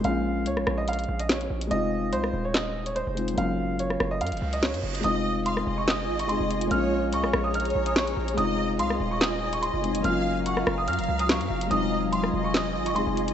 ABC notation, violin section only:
X:1
M:4/4
L:1/8
Q:1/4=144
K:Fphr
V:1 name="Violin section"
z8 | z8 | z8 | e2 f e4- e |
d2 e d4- d | e2 f e4- e | f2 g f4- f | e2 f e4- e |]